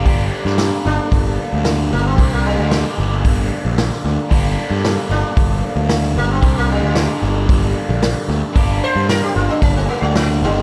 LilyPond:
<<
  \new Staff \with { instrumentName = "Sitar" } { \time 4/4 \key g \minor \tempo 4 = 113 r4. d'2 bes16 c'16~ | c'16 bes16 g2. r8 | r4. d'2 bes16 c'16~ | c'16 bes16 g2. r8 |
r8 c''8 bes'16 g'16 f'16 d'16 cis'16 c'16 bes16 g16 f8 <d g>8 | }
  \new Staff \with { instrumentName = "Overdriven electric guitar" } { \clef bass \time 4/4 \key g \minor <g, d g bes d' g'>1 | <g, d g bes d' g'>1 | <g, d g bes d' g'>1 | <g, d g bes d' g'>1 |
<g, d g bes d' g'>1 | }
  \new Staff \with { instrumentName = "Picked electric bass" } { \clef bass \time 4/4 \key g \minor g,,8 r16 g,8 r16 g,,16 r16 g,,8 r16 d,8. g,,8 | c,8. d,8 r16 g,,8 g,,8 r16 bes,,8 r16 d,16 r16 | g,,8 r16 g,8 r16 g,,16 r16 g,,8 r16 d,8. g,,8 | c,8. d,8 r16 g,,8 g,,8 r16 bes,,8 r16 d,16 r16 |
g,,8 r16 g,8 r16 g,,16 r16 g,,8 r16 d,8. g,,8 | }
  \new DrumStaff \with { instrumentName = "Drums" } \drummode { \time 4/4 <hho bd>8. sn16 <hho sn>4 <hho bd>4 <hho sn>4 | <hho bd>4 <hho sn>4 <hho bd>4 <hho sn>16 sn8. | <hho bd>4 <hho sn>4 <hho bd>4 <hho sn>16 sn8. | <hho bd>4 <hho sn>4 <hho bd>4 <hho sn>4 |
<hho bd>4 <hho sn>4 <hho bd>4 <hho sn>4 | }
>>